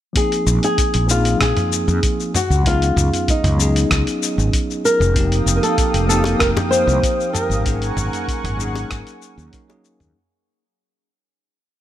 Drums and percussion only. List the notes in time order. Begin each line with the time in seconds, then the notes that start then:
0.16 kick, closed hi-hat, shaker
0.32 closed hi-hat, shaker
0.47 shaker
0.63 closed hi-hat, shaker
0.78 kick, closed hi-hat, shaker
0.94 closed hi-hat, shaker
1.09 shaker
1.25 closed hi-hat, shaker
1.41 kick, cross-stick, closed hi-hat, shaker
1.57 closed hi-hat, mid tom, shaker
1.73 shaker
1.88 shaker
2.03 kick, closed hi-hat, shaker
2.20 shaker
2.34 mid tom, shaker
2.51 shaker
2.66 kick, closed hi-hat, shaker
2.82 closed hi-hat, shaker
2.97 mid tom, shaker
3.13 closed hi-hat, shaker
3.28 kick, closed hi-hat, shaker
3.44 closed hi-hat, mid tom, shaker
3.60 shaker
3.76 closed hi-hat, shaker
3.91 kick, cross-stick, closed hi-hat, shaker
4.07 closed hi-hat, shaker
4.23 shaker
4.39 shaker
4.53 kick, closed hi-hat, shaker
4.71 shaker
4.86 shaker
5.01 mid tom, shaker
5.15 kick, closed hi-hat, shaker
5.32 closed hi-hat, shaker
5.47 shaker
5.63 closed hi-hat, shaker
5.78 kick, closed hi-hat, shaker
5.94 closed hi-hat, shaker
6.10 shaker
6.24 closed hi-hat, high bongo, shaker
6.40 kick, cross-stick, closed hi-hat, shaker
6.57 closed hi-hat, mid tom, high bongo, shaker
6.73 shaker
6.89 shaker
7.03 kick, closed hi-hat, shaker
7.20 shaker
7.35 mid tom, shaker
7.51 shaker
7.65 kick, closed hi-hat, shaker
7.82 closed hi-hat, shaker
7.97 mid tom, shaker
8.13 closed hi-hat, shaker
8.28 kick, closed hi-hat, shaker
8.45 closed hi-hat, mid tom, shaker
8.60 shaker
8.75 closed hi-hat, high bongo, shaker
8.91 kick, cross-stick, closed hi-hat, shaker
9.07 closed hi-hat, shaker
9.22 shaker
9.39 shaker
9.53 kick, closed hi-hat, shaker
9.70 high bongo, shaker
9.85 shaker
10.00 mid tom, shaker